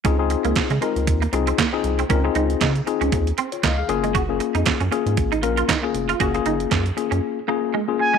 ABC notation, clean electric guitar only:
X:1
M:4/4
L:1/16
Q:"Swing 16ths" 1/4=117
K:Db
V:1 name="Clean electric guitar"
D z2 B, z A, A, z2 B, z C B, z2 C | D z E z E z2 D z2 C z B, z2 A, | G z2 E z D D z2 E z F E z2 F | G z E z D z2 D z2 B, z A, z2 A, |]